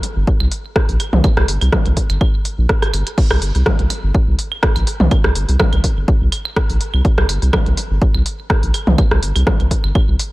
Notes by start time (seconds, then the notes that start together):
0.03 open hi-hat
0.16 G1
0.27 kick
0.40 C2, claves
0.52 open hi-hat
0.76 kick, cross-stick
0.89 A#1, open hi-hat
1.00 open hi-hat, claves
1.13 C2, mid tom
1.24 kick, closed hi-hat, claves
1.37 C2, cross-stick
1.48 G1, open hi-hat
1.61 C2, open hi-hat, claves
1.72 kick, cross-stick, mid tom
1.86 C2, closed hi-hat
1.97 kick, open hi-hat
2.10 G1, closed hi-hat, claves
2.21 kick, claves
2.45 open hi-hat
2.58 A#1
2.69 kick, cross-stick
2.82 cross-stick, open hi-hat, claves
2.93 G1, open hi-hat, claves
3.07 closed hi-hat
3.18 kick, closed hi-hat, crash
3.31 C2, cross-stick, claves
3.42 G1, open hi-hat
3.55 C2, open hi-hat
3.66 kick, cross-stick, mid tom
3.79 C2, closed hi-hat
3.90 open hi-hat, claves
4.03 G1
4.15 kick
4.28 C2
4.39 open hi-hat
4.52 claves
4.63 kick, cross-stick
4.76 A#1, open hi-hat, claves
4.87 open hi-hat
5.00 C2, mid tom
5.11 kick, closed hi-hat, claves
5.24 C2, cross-stick
5.35 G1, open hi-hat
5.49 C2, open hi-hat
5.60 kick, cross-stick, mid tom, claves
5.73 C2, closed hi-hat, claves
5.84 kick, open hi-hat
5.97 G1
6.08 kick
6.21 C2
6.32 open hi-hat, claves
6.45 claves
6.56 kick, cross-stick
6.69 A#1, open hi-hat
6.81 open hi-hat
6.94 C2, claves
7.05 kick, closed hi-hat
7.18 C2, cross-stick
7.29 G1, open hi-hat, claves
7.42 C2, open hi-hat
7.53 kick, cross-stick, mid tom, claves
7.66 C2, closed hi-hat
7.77 open hi-hat
7.91 G1
8.02 kick
8.15 C2, claves
8.26 open hi-hat
8.50 kick, cross-stick
8.63 A#1, open hi-hat
8.74 open hi-hat, claves
8.87 C2, mid tom
8.98 kick, closed hi-hat, claves
9.11 C2, cross-stick
9.23 G1, open hi-hat
9.36 C2, open hi-hat, claves
9.47 kick, cross-stick, mid tom
9.60 C2, closed hi-hat
9.71 kick, open hi-hat
9.84 G1, claves
9.95 kick, claves
10.08 C2
10.19 open hi-hat